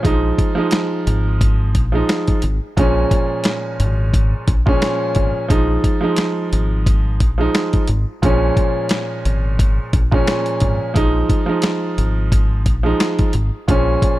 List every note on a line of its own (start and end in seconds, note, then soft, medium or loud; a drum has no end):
0.03 0.31 A#1 loud
0.03 0.53 F3 medium
0.03 0.53 G#3 medium
0.03 0.54 D#4 loud
0.03 kick loud
0.03 closed hi-hat medium
0.39 kick medium
0.39 closed hi-hat medium
0.55 1.81 F3 loud
0.55 1.81 G#3 medium
0.55 1.82 D#4 loud
0.71 snare loud
0.71 snare medium
0.71 closed hi-hat loud
1.07 1.75 G#1 medium
1.07 closed hi-hat medium
1.41 kick loud
1.41 closed hi-hat medium
1.75 2.01 A#1 medium
1.75 kick medium
1.75 closed hi-hat medium
1.92 2.39 F3 medium
1.92 2.39 G#3 medium
1.92 2.40 D#4 loud
2.09 snare loud
2.09 snare medium
2.09 closed hi-hat medium
2.28 kick loud
2.28 closed hi-hat medium
2.42 2.58 G#1 medium
2.42 closed hi-hat medium
2.77 3.04 A#1 loud
2.77 4.50 A#2 medium
2.77 4.50 F3 medium
2.77 4.51 G#3 medium
2.77 4.51 C#4 loud
2.77 kick loud
2.77 closed hi-hat medium
3.11 kick loud
3.11 closed hi-hat medium
3.44 snare loud
3.44 snare medium
3.44 closed hi-hat loud
3.80 4.32 G#1 medium
3.80 closed hi-hat medium
4.14 kick loud
4.14 closed hi-hat medium
4.48 4.74 A#1 medium
4.48 kick medium
4.48 closed hi-hat medium
4.66 5.43 A#2 medium
4.66 5.44 F3 medium
4.66 5.44 G#3 medium
4.66 5.45 C#4 loud
4.66 kick loud
4.82 snare loud
4.82 snare medium
4.82 closed hi-hat medium
5.15 5.31 G#1 loud
5.15 kick medium
5.15 closed hi-hat medium
5.48 5.76 A#1 loud
5.48 5.98 F3 medium
5.48 5.99 G#3 medium
5.48 6.00 D#4 loud
5.48 kick loud
5.48 closed hi-hat medium
5.84 kick medium
5.84 closed hi-hat medium
6.01 7.26 F3 loud
6.01 7.27 G#3 medium
6.01 7.28 D#4 loud
6.16 finger snap medium
6.16 snare loud
6.16 snare medium
6.16 closed hi-hat loud
6.53 7.21 G#1 medium
6.53 closed hi-hat medium
6.86 kick loud
6.86 closed hi-hat medium
7.20 7.47 A#1 medium
7.20 kick medium
7.20 closed hi-hat medium
7.38 7.84 F3 medium
7.38 7.85 G#3 medium
7.38 7.86 D#4 loud
7.55 finger snap medium
7.55 snare loud
7.55 snare medium
7.55 closed hi-hat medium
7.73 kick loud
7.73 closed hi-hat medium
7.88 8.04 G#1 medium
7.88 closed hi-hat medium
8.22 8.49 A#1 loud
8.22 9.95 A#2 medium
8.22 9.96 F3 medium
8.22 9.96 G#3 medium
8.22 9.97 C#4 loud
8.22 kick loud
8.22 closed hi-hat medium
8.57 kick medium
8.57 closed hi-hat medium
8.89 finger snap medium
8.89 snare loud
8.89 snare medium
8.89 closed hi-hat loud
9.25 9.78 G#1 medium
9.25 closed hi-hat medium
9.59 kick loud
9.59 closed hi-hat medium
9.93 10.20 A#1 medium
9.93 kick loud
9.93 closed hi-hat medium
10.11 10.89 A#2 medium
10.11 10.89 F3 medium
10.11 10.90 G#3 medium
10.11 10.90 C#4 loud
10.11 kick loud
10.27 finger snap medium
10.27 snare loud
10.27 snare medium
10.27 closed hi-hat medium
10.46 closed hi-hat medium
10.60 10.77 G#1 loud
10.60 kick medium
10.60 closed hi-hat medium
10.94 11.22 A#1 loud
10.94 11.44 F3 medium
10.94 11.44 G#3 medium
10.94 11.45 D#4 loud
10.94 kick loud
10.94 closed hi-hat medium
11.30 kick medium
11.30 closed hi-hat medium
11.46 12.72 F3 loud
11.46 12.72 G#3 medium
11.46 12.73 D#4 medium
11.62 finger snap medium
11.62 snare loud
11.62 snare medium
11.62 closed hi-hat loud
11.98 12.66 G#1 medium
11.98 closed hi-hat medium
12.32 kick loud
12.32 closed hi-hat medium
12.66 12.92 A#1 medium
12.66 kick medium
12.66 closed hi-hat medium
12.83 13.30 F3 medium
12.83 13.30 G#3 medium
12.83 13.31 D#4 loud
13.00 finger snap medium
13.00 snare loud
13.00 snare medium
13.00 closed hi-hat medium
13.19 kick loud
13.19 closed hi-hat medium
13.33 13.49 G#1 medium
13.33 closed hi-hat medium
13.68 13.95 A#1 loud
13.68 14.19 A#2 medium
13.68 14.19 F3 medium
13.68 14.19 G#3 medium
13.68 14.19 C#4 loud
13.68 kick loud
13.68 closed hi-hat medium
14.02 kick medium
14.02 closed hi-hat medium